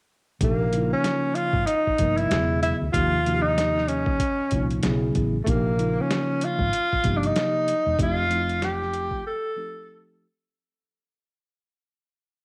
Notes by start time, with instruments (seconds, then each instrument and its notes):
0.41 fretless electric bass A#1, tine electric piano C3 F3 A#3 D#4 G4, tenor saxophone A#3, kick, closed hi-hat
0.71 tine electric piano C#3 F3 A#3 D#4 E4, closed hi-hat
0.80 tine electric piano F4
0.93 tenor saxophone C#4
1.04 snare, closed hi-hat
1.35 tenor saxophone F4, closed hi-hat
1.53 fretless electric bass G#1, kick
1.67 tenor saxophone D#4, closed hi-hat
1.87 muted fretless electric bass stroke, kick
1.98 fretless electric bass G1, tine electric piano C3 F3 A#3 D#4 A#4, kick, closed hi-hat
2.17 tenor saxophone E4, closed hi-hat
2.30 fretless electric bass E1, tine electric piano C#3 F#3 B3 E4 G#4, snare, closed hi-hat
2.63 tenor saxophone E4, closed hi-hat
2.81 fretless electric bass D2
2.93 fretless electric bass D#2, tine electric piano C3 F3 A#3 D#4 G4, tenor saxophone F4, kick, closed hi-hat
3.25 tine electric piano C3 F3 A#3 D#4 F#4, closed hi-hat
3.35 tine electric piano G4
3.42 tenor saxophone D#4
3.58 snare, closed hi-hat
3.78 snare
3.88 tenor saxophone C#4, closed hi-hat
4.06 kick
4.20 kick, closed hi-hat
4.51 fretless electric bass C2, tine electric piano A#2 F3 A#3 D#4 F4, kick, closed hi-hat
4.71 closed hi-hat
4.83 fretless electric bass B1, tine electric piano C#3 F#3 B3 E4 G#4, snare, closed hi-hat
5.15 fretless electric bass A1, kick, closed hi-hat
5.44 fretless electric bass A#1, tine electric piano C3 F3 A#3, tenor saxophone A3, kick, closed hi-hat
5.48 tenor saxophone A#3, tine electric piano D#4 G4
5.77 tine electric piano C#3 F3 A#3 D#4 F4, closed hi-hat
6.01 tenor saxophone C#4
6.11 snare, closed hi-hat
6.41 tenor saxophone F4, closed hi-hat
6.59 fretless electric bass G#1, kick
6.73 closed hi-hat
6.93 muted fretless electric bass stroke, kick
7.04 fretless electric bass G1, tine electric piano C3 F3 A#3 D#4 G4, kick, closed hi-hat
7.17 tenor saxophone D4
7.23 tenor saxophone D#4, closed hi-hat
7.36 snare, closed hi-hat
7.68 closed hi-hat
7.86 fretless electric bass E1
7.98 fretless electric bass F1, tine electric piano F3 A3 C4 D#4 G4, kick, closed hi-hat
8.02 tenor saxophone F4
8.30 tine electric piano F3 A3 C4 D#4 E4, closed hi-hat
8.38 tine electric piano F4
8.49 closed hi-hat
8.62 tenor saxophone G4, snare, closed hi-hat
8.82 snare
8.94 closed hi-hat
9.11 kick
9.27 tenor saxophone A4
9.56 tine electric piano F3 A3 C4 D#4 G4